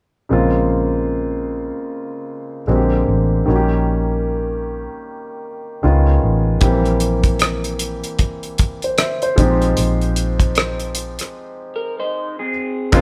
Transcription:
0.29 fingered electric bass A#1, upright piano C#3 G#3 A#3 C4 F4
2.67 fingered electric bass A#1, upright piano D3 G#3 A#3 C4 F#4
2.76 upright piano G4
3.08 fingered electric bass A1
3.46 fingered electric bass A#1, upright piano D#3 G3 A#3 C#4 F#4
3.56 upright piano G4
5.83 fingered electric bass C#2, upright piano D#3 G#3 B3 C#4 F4
6.23 fingered electric bass A1
6.61 fingered electric bass A#1, upright piano E3 G3 A#3 C4 G4, kick, closed hi-hat
6.85 closed hi-hat
7.00 closed hi-hat
7.23 kick, closed hi-hat
7.39 cross-stick, closed hi-hat
7.64 closed hi-hat
7.79 closed hi-hat
8.04 closed hi-hat
8.19 kick, closed hi-hat
8.43 closed hi-hat
8.58 kick, closed hi-hat
8.82 upright piano C5, closed hi-hat
8.98 upright piano C5 E5, cross-stick, closed hi-hat
9.22 upright piano C5, closed hi-hat
9.36 fingered electric bass A#1, upright piano F3 G#3 C4 D#4 G4, kick, closed hi-hat
9.62 closed hi-hat
9.77 fingered electric bass A#1, closed hi-hat
10.02 closed hi-hat
10.16 closed hi-hat
10.40 kick, closed hi-hat
10.55 cross-stick, closed hi-hat
10.80 closed hi-hat
10.95 closed hi-hat
11.19 cross-stick, closed hi-hat
11.76 clean electric guitar A#4
11.99 clean electric guitar D#4 C5
12.39 clean electric guitar C4 G#4
12.92 fingered electric bass A#1, upright piano C#3 G#3 A#3 C4 F4, kick, closed hi-hat

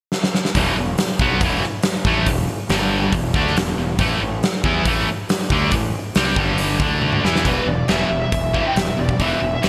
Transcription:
0.12 snare
0.24 snare
0.35 snare
0.45 snare
0.55 fingered electric bass E1, distorted electric guitar E2 B2 E3, kick, open hi-hat
0.77 fingered electric bass E1, distorted electric guitar E2 B2
0.98 snare, open hi-hat
1.19 fingered electric bass B1, distorted electric guitar B2 F#3 B3, kick
1.41 fingered electric bass E1, distorted electric guitar E2 B2 E3, kick, open hi-hat
1.63 snare
1.83 snare, open hi-hat
2.05 fingered electric bass A1, distorted electric guitar A2 E3 A3, kick
2.26 fingered electric bass E1, distorted electric guitar E2 B2, kick, open hi-hat
2.69 fingered electric bass G1, distorted electric guitar G2 D3 G3, snare, open hi-hat
3.12 fingered electric bass E1, distorted electric guitar E2 B2, kick, open hi-hat
3.34 fingered electric bass D2, distorted electric guitar D3 A3 D4, kick
3.47 snare
3.56 fingered electric bass E1, distorted electric guitar E2 B2, snare, open hi-hat
3.78 fingered electric bass E1, distorted electric guitar E2 B2
3.99 fingered electric bass A1, distorted electric guitar A2 E3 A3, kick, open hi-hat
4.22 fingered electric bass A1, distorted electric guitar A2 E3
4.43 snare, open hi-hat
4.64 fingered electric bass E2, distorted electric guitar E3 B3 E4, kick
4.85 fingered electric bass A1, distorted electric guitar A2 E3 A3, kick, open hi-hat
5.29 snare, open hi-hat
5.50 fingered electric bass D2, distorted electric guitar D3 A3 D4, kick
5.71 fingered electric bass A1, distorted electric guitar A2 E3, kick, open hi-hat
6.15 fingered electric bass C2, distorted electric guitar C3 G3 C4, snare, open hi-hat
6.36 fingered electric bass G1, distorted electric guitar G2 D3 G3, kick
6.58 open hi-hat
6.79 fingered electric bass D2, distorted electric guitar D3 A3 D4, kick
7.02 high tom
7.13 mid tom
7.24 fingered electric bass E2, distorted electric guitar E3 B3 E4, snare
7.36 snare
7.45 fingered electric bass E1, distorted electric guitar E2 B2 E3, lead electric guitar B4, kick, open hi-hat
7.66 fingered electric bass E1, distorted electric guitar E2 B2, lead electric guitar D5
7.88 fingered electric bass E1, distorted electric guitar E2 B2 E3, lead electric guitar E5, snare, open hi-hat
8.10 fingered electric bass E1, distorted electric guitar E2 B2
8.22 lead electric guitar E5
8.32 fingered electric bass E1, distorted electric guitar E2 B2, kick, open hi-hat
8.53 distorted electric guitar E2 B2 E3, kick
8.67 lead electric guitar G5
8.76 fingered electric bass E1, distorted electric guitar E2 B2, lead electric guitar E5, snare, open hi-hat
8.97 fingered electric bass E1, distorted electric guitar E2 B2, lead electric guitar D5
9.09 kick
9.19 fingered electric bass E1, distorted electric guitar E2 B2 E3, lead electric guitar E5, kick, open hi-hat
9.42 fingered electric bass E1, distorted electric guitar E2 B2
9.55 lead electric guitar E5
9.62 fingered electric bass E1, distorted electric guitar E2 B2 E3, snare, open hi-hat

